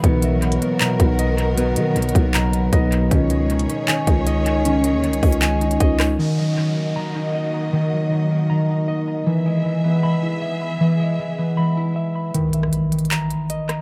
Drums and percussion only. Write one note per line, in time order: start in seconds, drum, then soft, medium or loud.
0.04 kick loud
0.04 closed hi-hat medium
0.22 closed hi-hat medium
0.42 closed hi-hat medium
0.52 closed hi-hat medium
0.62 closed hi-hat medium
0.81 clap loud
0.81 closed hi-hat medium
1.00 kick loud
1.00 closed hi-hat medium
1.19 closed hi-hat medium
1.38 closed hi-hat medium
1.58 closed hi-hat medium
1.76 closed hi-hat medium
1.96 closed hi-hat medium
2.02 closed hi-hat medium
2.09 closed hi-hat medium
2.15 kick medium
2.15 closed hi-hat medium
2.34 clap loud
2.34 closed hi-hat medium
2.53 closed hi-hat medium
2.73 kick loud
2.73 closed hi-hat medium
2.92 closed hi-hat medium
3.11 kick loud
3.11 closed hi-hat medium
3.30 closed hi-hat medium
3.50 closed hi-hat medium
3.59 closed hi-hat medium
3.70 closed hi-hat medium
3.88 clap loud
3.88 closed hi-hat medium
4.07 kick loud
4.07 closed hi-hat medium
4.27 closed hi-hat medium
4.46 closed hi-hat medium
4.65 closed hi-hat medium
4.84 closed hi-hat medium
5.04 closed hi-hat soft
5.13 closed hi-hat medium
5.23 kick medium
5.23 closed hi-hat soft
5.23 open hi-hat medium
5.32 closed hi-hat medium
5.42 clap loud
5.42 closed hi-hat medium
5.61 closed hi-hat medium
5.71 closed hi-hat medium
5.80 kick loud
5.80 closed hi-hat medium
6.00 cross-stick loud
6.00 clap loud
6.00 open hi-hat medium
12.34 closed hi-hat medium
12.53 closed hi-hat medium
12.63 cross-stick medium
12.73 closed hi-hat medium
12.92 closed hi-hat medium
12.99 closed hi-hat medium
13.05 closed hi-hat soft
13.11 clap loud
13.11 closed hi-hat medium
13.30 closed hi-hat medium
13.50 closed hi-hat medium
13.69 cross-stick loud
13.69 closed hi-hat medium